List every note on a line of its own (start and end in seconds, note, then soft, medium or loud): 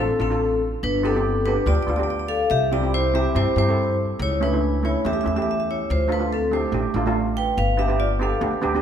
0.00 0.18 C4 medium
0.00 0.10 D4 medium
0.00 0.10 F4 medium
0.00 0.11 A4 medium
0.00 0.18 A4 medium
0.19 0.75 A1 medium
0.19 0.59 C4 medium
0.19 0.25 D4 medium
0.19 0.26 F4 medium
0.19 0.26 A4 medium
0.19 0.59 A4 medium
0.30 0.74 D4 medium
0.30 0.75 F4 medium
0.30 0.75 A4 medium
0.83 1.57 G1 loud
0.83 1.02 D4 medium
0.83 1.02 B4 loud
1.03 1.10 B3 medium
1.03 1.43 C4 medium
1.03 1.10 D4 medium
1.03 1.11 G4 medium
1.03 1.48 A4 medium
1.15 1.33 B3 medium
1.15 1.34 D4 medium
1.15 1.34 G4 medium
1.45 1.58 B3 medium
1.45 1.65 D4 medium
1.45 1.59 D4 medium
1.45 1.60 G4 medium
1.45 1.65 B4 medium
1.66 1.76 D2 medium
1.66 1.80 B3 medium
1.66 1.80 D4 medium
1.66 1.74 F4 medium
1.66 1.81 G4 medium
1.66 1.74 D5 loud
1.75 1.81 D5 medium
1.83 1.87 D5 medium
1.87 2.43 D2 medium
1.87 1.94 B3 medium
1.87 1.95 D4 medium
1.87 1.95 F4 medium
1.87 1.95 D5 medium
1.96 2.42 B3 medium
1.96 2.43 D4 medium
1.96 2.43 G4 medium
1.96 2.02 D5 medium
2.03 2.09 D5 medium
2.10 2.18 D5 medium
2.19 2.26 D5 medium
2.28 2.49 A4 medium
2.28 2.51 F5 loud
2.50 3.25 C2 loud
2.50 2.70 G4 medium
2.50 2.70 E5 loud
2.72 2.78 C4 medium
2.72 2.79 E4 medium
2.72 2.92 F4 medium
2.72 2.79 G4 medium
2.72 2.92 D5 medium
2.82 3.01 C4 medium
2.82 3.02 E4 medium
2.82 3.02 G4 medium
2.94 3.13 E4 medium
2.94 3.15 C5 loud
3.14 3.27 C4 medium
3.14 3.28 E4 medium
3.14 3.34 G4 medium
3.14 3.28 G4 medium
3.14 3.36 E5 loud
3.35 3.45 G2 medium
3.35 3.48 C4 medium
3.35 3.49 E4 medium
3.35 3.56 E4 medium
3.35 3.49 G4 medium
3.35 3.55 C5 loud
3.56 4.12 G2 medium
3.56 3.63 C4 medium
3.56 3.64 E4 medium
3.56 3.97 E4 medium
3.56 3.64 G4 medium
3.56 3.97 C5 medium
3.68 4.12 C4 medium
3.68 4.12 E4 medium
3.68 4.13 A4 medium
4.19 4.94 C#2 loud
4.19 4.41 E4 medium
4.19 4.43 C#5 loud
4.40 4.47 A3 medium
4.40 4.48 C#4 medium
4.40 4.81 D4 medium
4.40 4.48 E4 medium
4.40 4.85 B4 medium
4.52 4.71 A3 medium
4.52 4.72 C#4 medium
4.52 4.72 E4 medium
4.83 4.96 A3 medium
4.83 4.97 C#4 medium
4.83 4.97 E4 medium
4.83 4.95 E4 medium
4.83 4.94 C#5 medium
5.04 5.14 E2 medium
5.04 5.17 A3 medium
5.04 5.18 C#4 medium
5.04 5.18 G4 medium
5.04 5.13 G4 medium
5.04 5.12 E5 loud
5.13 5.20 E5 medium
5.21 5.31 A3 medium
5.21 5.31 C#4 medium
5.21 5.26 E5 medium
5.25 5.81 E2 medium
5.25 5.32 E4 medium
5.25 5.35 E5 medium
5.36 5.80 A3 medium
5.36 5.81 C#4 medium
5.36 5.81 G4 medium
5.36 5.41 E5 medium
5.42 5.49 E5 medium
5.51 5.58 E5 medium
5.60 5.66 E5 medium
5.71 5.89 E4 medium
5.71 5.91 C#5 medium
5.90 6.64 D2 loud
5.90 6.10 F4 medium
5.90 6.10 C5 loud
6.08 6.15 A3 medium
6.08 6.16 D4 medium
6.08 6.16 F4 medium
6.12 6.31 D4 medium
6.12 6.33 B4 medium
6.19 6.39 A3 medium
6.19 6.39 D4 medium
6.19 6.40 F4 medium
6.33 6.52 C4 medium
6.33 6.53 A4 medium
6.51 6.65 A3 medium
6.51 6.65 D4 medium
6.51 6.73 E4 medium
6.51 6.66 G4 medium
6.51 6.72 C5 medium
6.71 6.82 A1 medium
6.71 6.85 A3 medium
6.71 6.86 D4 medium
6.71 6.87 G4 medium
6.94 7.50 A1 medium
6.94 7.01 A3 medium
6.94 7.02 D4 medium
6.94 7.02 F4 medium
7.06 7.50 A3 medium
7.06 7.50 D4 medium
7.06 7.51 F4 loud
7.37 7.57 B4 medium
7.37 7.58 G5 loud
7.57 8.32 G1 loud
7.57 7.78 B4 medium
7.57 7.77 F5 loud
7.77 7.85 B3 medium
7.77 7.85 D4 medium
7.77 7.86 G4 medium
7.77 7.98 G4 medium
7.77 8.00 E5 medium
7.88 8.08 B3 medium
7.88 8.08 D4 medium
7.88 8.09 G4 medium
8.00 8.19 F4 medium
8.00 8.19 D5 loud
8.19 8.33 B3 medium
8.19 8.34 D4 medium
8.19 8.34 G4 medium
8.19 8.41 A4 medium
8.19 8.41 F5 medium
8.41 8.51 D2 medium
8.41 8.55 B3 medium
8.41 8.55 D4 medium
8.41 8.55 G4 medium
8.61 8.82 D2 medium
8.61 8.69 B3 medium
8.61 8.69 D4 medium
8.61 8.70 G4 loud
8.74 8.82 B3 medium
8.74 8.82 D4 medium
8.74 8.82 G4 loud